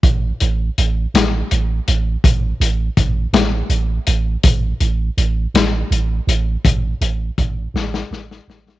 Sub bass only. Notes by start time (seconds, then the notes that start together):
0.03 A1
0.41 A1
0.78 A1
1.14 A1
1.52 A1
1.88 A1
2.24 A1
2.60 A1
2.98 A1
3.33 A1
3.69 A1
4.07 A1
4.44 A1
4.81 A1
5.18 A1
5.54 A1
5.91 A1
6.27 A1
6.65 A1
7.01 A1
7.38 A1
7.74 A1
8.11 A1
8.48 A1